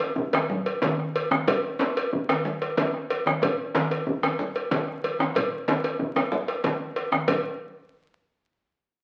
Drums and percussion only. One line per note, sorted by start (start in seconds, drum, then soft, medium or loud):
0.00 cowbell medium
0.00 djembe slap soft
0.16 bombo low loud
0.16 djembe bass medium
0.33 bombo rim medium
0.33 cowbell medium
0.33 djembe slap medium
0.33 high conga medium
0.33 djembe tone medium
0.50 low conga medium
0.66 cowbell soft
0.82 bombo low loud
0.82 cowbell medium
0.82 djembe slap medium
0.82 djembe tone medium
0.82 high conga medium
0.82 djembe bass medium
1.00 bombo rim soft
1.16 cowbell medium
1.31 bombo rim medium
1.31 djembe slap medium
1.31 high conga medium
1.31 djembe tone medium
1.47 bombo low loud
1.47 cowbell medium
1.47 low conga medium
1.47 djembe bass medium
1.64 djembe slap soft
1.79 bombo rim soft
1.79 cowbell medium
1.79 djembe slap medium
1.79 djembe tone medium
1.96 cowbell medium
1.96 djembe slap soft
2.13 bombo low loud
2.13 djembe bass medium
2.29 bombo rim medium
2.29 cowbell medium
2.29 djembe slap medium
2.29 high conga medium
2.29 djembe tone medium
2.45 low conga medium
2.62 cowbell soft
2.77 cowbell medium
2.77 djembe slap medium
2.77 high conga medium
2.77 djembe tone medium
2.77 djembe bass medium
2.94 bombo rim soft
3.10 cowbell medium
3.10 high conga soft
3.26 bombo rim medium
3.26 djembe slap medium
3.26 high conga medium
3.26 djembe tone medium
3.42 bombo low loud
3.42 cowbell medium
3.42 low conga medium
3.42 djembe bass medium
3.59 djembe slap soft
3.75 bombo rim soft
3.75 cowbell medium
3.75 djembe slap medium
3.75 djembe tone medium
3.75 high conga medium
3.91 cowbell soft
3.91 djembe slap soft
4.07 bombo low loud
4.07 djembe bass medium
4.23 bombo rim medium
4.23 cowbell medium
4.23 djembe slap medium
4.23 high conga medium
4.23 djembe tone medium
4.39 low conga medium
4.56 cowbell soft
4.71 bombo low loud
4.71 cowbell soft
4.71 djembe slap medium
4.71 djembe tone medium
4.71 high conga medium
4.71 djembe bass medium
4.88 bombo rim soft
5.04 cowbell soft
5.04 high conga soft
5.19 bombo rim medium
5.19 djembe slap medium
5.19 high conga medium
5.19 djembe tone medium
5.35 bombo rim soft
5.35 bombo low medium
5.35 cowbell medium
5.35 djembe slap soft
5.35 high conga soft
5.35 low conga medium
5.35 djembe bass medium
5.52 djembe slap soft
5.52 high conga soft
5.68 bombo rim soft
5.68 cowbell soft
5.68 djembe slap medium
5.68 high conga loud
5.68 djembe tone medium
5.84 bombo rim soft
5.84 cowbell soft
5.84 djembe slap soft
5.99 bombo low loud
5.99 djembe bass medium
6.16 bombo rim medium
6.16 cowbell soft
6.16 djembe slap medium
6.16 high conga medium
6.16 djembe tone medium
6.32 djembe slap soft
6.32 low conga medium
6.48 bombo rim soft
6.48 cowbell soft
6.64 bombo rim soft
6.64 bombo low loud
6.64 cowbell soft
6.64 djembe slap medium
6.64 high conga medium
6.64 djembe tone medium
6.64 djembe bass medium
6.80 djembe slap soft
6.80 high conga soft
6.96 cowbell soft
6.96 high conga soft
7.12 bombo rim medium
7.12 djembe slap medium
7.12 high conga medium
7.12 djembe tone medium
7.28 bombo low medium
7.28 cowbell medium
7.28 low conga medium
7.28 djembe bass medium